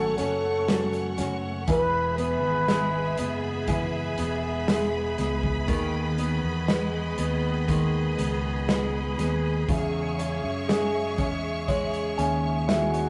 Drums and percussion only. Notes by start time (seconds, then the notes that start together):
0.18 closed hi-hat
0.68 snare, closed hi-hat
0.93 closed hi-hat
1.18 snare, closed hi-hat
1.68 kick, closed hi-hat
2.18 closed hi-hat
2.68 snare, closed hi-hat
3.17 closed hi-hat
3.68 kick, closed hi-hat
4.18 closed hi-hat
4.68 snare, closed hi-hat
5.18 snare, closed hi-hat
5.43 kick
5.68 kick, closed hi-hat
6.18 closed hi-hat
6.68 snare, closed hi-hat
7.18 closed hi-hat
7.68 kick, closed hi-hat
8.19 closed hi-hat
8.69 snare, closed hi-hat
9.19 snare, closed hi-hat
9.69 kick, closed hi-hat
10.19 closed hi-hat
10.69 snare, closed hi-hat
11.18 kick, closed hi-hat
11.68 kick, closed hi-hat
11.93 closed hi-hat
12.19 closed hi-hat
12.69 snare, closed hi-hat
12.94 closed hi-hat